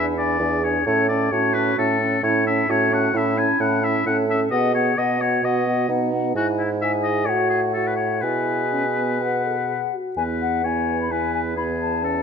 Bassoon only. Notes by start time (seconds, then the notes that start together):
Already playing: E2
0.40 E2
0.86 A2
1.32 A2
1.78 A2
2.23 A2
2.69 A2
3.14 A2
3.60 A2
4.06 A2
4.51 B2
4.97 B2
5.43 B2
5.89 B2
6.35 G#2
7.27 A2
8.23 B2
10.17 E2